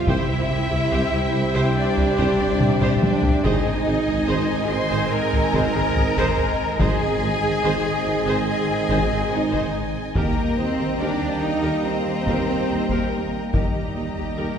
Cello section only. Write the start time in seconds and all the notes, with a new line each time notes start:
0.08 E4
1.77 D4
3.03 D4
3.45 D#4
4.71 C5
5.12 A#4
6.80 G#4
8.48 G#4
9.32 D#4
10.17 A#3
10.60 C4
11.02 D4
11.43 D#4
11.86 C4
13.12 A#3
13.53 G3